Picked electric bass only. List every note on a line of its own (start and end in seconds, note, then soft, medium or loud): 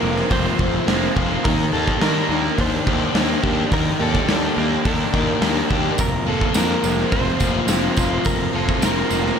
0.03 0.22 F1 medium
0.31 0.50 F1 medium
0.59 0.78 F1 medium
0.88 1.07 F1 medium
1.16 1.35 F1 medium
1.45 1.64 D#2 medium
1.73 1.92 D#2 medium
2.01 2.20 D#3 medium
2.29 2.48 D#2 medium
2.59 2.77 D#2 medium
2.87 3.06 D#2 medium
3.15 3.34 D#2 medium
3.44 3.62 D#2 medium
3.72 3.91 D#2 medium
4.00 4.19 D#2 medium
4.29 4.48 D#2 medium
4.57 4.76 D#2 medium
4.85 5.04 D#2 medium
5.14 5.33 D#2 medium
5.42 5.61 D#2 medium
5.71 5.89 D#2 medium
5.99 6.18 F1 medium
6.26 6.46 F1 medium
6.55 6.74 F2 medium
6.84 7.03 F1 medium
7.12 7.31 F1 medium
7.41 7.60 F1 medium
7.68 7.87 F1 medium
7.97 8.16 F1 medium
8.26 8.45 F1 medium
8.55 8.74 F1 medium
8.83 9.02 F1 medium
9.11 9.30 F1 medium